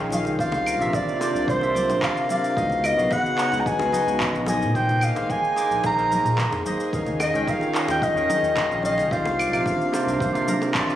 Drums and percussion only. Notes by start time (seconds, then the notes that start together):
0.10 high conga, cabasa
0.25 high bongo, cabasa
0.39 kick, cabasa
0.52 high bongo, low conga, cabasa
0.66 cabasa, claves
0.81 cabasa
0.93 kick, high bongo, cabasa
1.09 cabasa
1.21 high bongo, cabasa
1.36 cabasa
1.48 kick, cabasa
1.61 high bongo, cabasa
1.75 high conga, cabasa
1.90 high bongo, cabasa
2.02 kick, clap, cabasa
2.17 cabasa
2.29 high bongo, high conga, cabasa
2.44 cabasa
2.57 kick, cabasa
2.70 low conga, cabasa
2.84 high bongo, cabasa, claves
2.99 cabasa
3.11 kick, high bongo, cabasa
3.26 cabasa
3.38 clap, cabasa
3.52 high bongo, cabasa
3.66 kick, cabasa
3.79 high bongo, cabasa
3.92 high conga, cabasa
4.08 cabasa
4.20 kick, clap, high bongo, cabasa
4.35 cabasa
4.46 high bongo, high conga, cabasa
4.62 cabasa
4.75 kick, cabasa
4.89 high bongo, low conga, cabasa
5.01 cabasa, claves
5.16 high bongo, cabasa
5.30 kick, cabasa
5.44 cabasa
5.56 high bongo, cabasa
5.71 cabasa
5.84 kick, high bongo, cabasa
5.99 cabasa
6.12 high conga, cabasa
6.26 high bongo, cabasa
6.38 kick, clap, cabasa
6.52 high bongo, cabasa
6.66 high conga, cabasa
6.80 cabasa
6.93 kick, high bongo, cabasa
7.06 low conga, cabasa
7.20 high bongo, cabasa, claves
7.35 cabasa
7.47 kick, cabasa
7.61 high bongo, cabasa
7.75 clap, cabasa
7.88 high bongo, cabasa
8.02 kick, cabasa
8.17 cabasa
8.30 high bongo, high conga, cabasa
8.44 cabasa
8.57 kick, clap, high bongo, cabasa
8.72 cabasa
8.83 high conga, cabasa
8.98 high bongo, cabasa
9.11 kick, cabasa
9.25 high bongo, low conga, cabasa
9.39 cabasa, claves
9.53 cabasa, claves
9.66 kick, high bongo, cabasa
9.81 cabasa
9.93 high bongo, cabasa
10.08 cabasa
10.20 kick, cabasa
10.35 high bongo, cabasa
10.48 high conga, cabasa
10.62 high bongo, cabasa
10.74 kick, clap, cabasa
10.90 cabasa